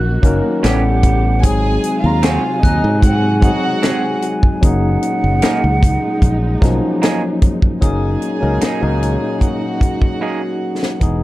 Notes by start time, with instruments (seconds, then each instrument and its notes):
Already playing: fingered electric bass A#1, string section D#3 A#3 F#4, flute F#6
0.23 fingered electric bass F#1, tine electric piano F#3 A#3 C#4 D#4 A#4, kick, closed hi-hat
0.63 fingered electric bass A1, string section C#3 B3 G4, tine electric piano G3 B3 C#4 E4 A4, clean electric guitar B3 C#4 G4, flute F#5, snare, closed hi-hat
1.03 kick, closed hi-hat
1.42 fingered electric bass G#1, string section C3 F#3 G#3, tine electric piano F#3 G#3 C4 D#4 G#4, violin section G#4 G#5, flute G#5, kick, closed hi-hat
1.84 closed hi-hat
2.02 fingered electric bass D#2, violin section F4 F5, flute A#5
2.23 clean electric guitar C4 F#4 G#4, flute G#5, snare, closed hi-hat
2.63 fingered electric bass D#2, violin section D#4 D#5, glockenspiel F#6, kick, closed hi-hat
2.84 fingered electric bass G#2
3.02 violin section F#4 F#5, flute G#5, kick, closed hi-hat
3.41 tine electric piano F#3 G#3 C4 D#4 G#4, violin section F#4 F#5, kick, closed hi-hat
3.65 flute F#5
3.83 clean electric guitar C4 F#4 G#4, flute G#5, snare, closed hi-hat
4.22 closed hi-hat
4.43 kick
4.61 fingered electric bass F#1, string section A#2 G#3 D#4, tine electric piano F#3 A#3 C#4 D#4 G#4, kick, closed hi-hat
4.66 flute F#5
5.03 closed hi-hat
5.24 fingered electric bass F#1
5.42 clean electric guitar A#3 D#4 G#4, snare, closed hi-hat
5.64 fingered electric bass C#2
5.83 kick, closed hi-hat
6.22 fingered electric bass A#1, kick, closed hi-hat
6.61 fingered electric bass B1, tine electric piano F3 F#3 A#3 C#4 D#4, kick, snare, closed hi-hat
7.02 clean electric guitar A#3 D#4 G#4, snare, closed hi-hat
7.42 kick, closed hi-hat
7.62 kick
7.81 fingered electric bass F#1, string section A#2 G#3 D#4, tine electric piano F#3 A#3 C#4 D#4 G#4, violin section G#4 G#5, glockenspiel D#6, kick, closed hi-hat
8.22 closed hi-hat
8.41 fingered electric bass C#2, tine electric piano F#3 A#3 C#4 D#4 A#4
8.61 clean electric guitar A#3 D#4 G#4, snare, closed hi-hat
8.81 fingered electric bass C#2, tine electric piano F#3 A#3 C#4 D#4 G#4
9.03 closed hi-hat
9.41 violin section F#4 F#5, kick, closed hi-hat
9.81 kick, closed hi-hat
10.02 kick
10.21 clean electric guitar A#3 D#4 G#4
10.83 snare
11.00 fingered electric bass E1, tine electric piano E3 G#3 B3 D#4 G#4, kick, closed hi-hat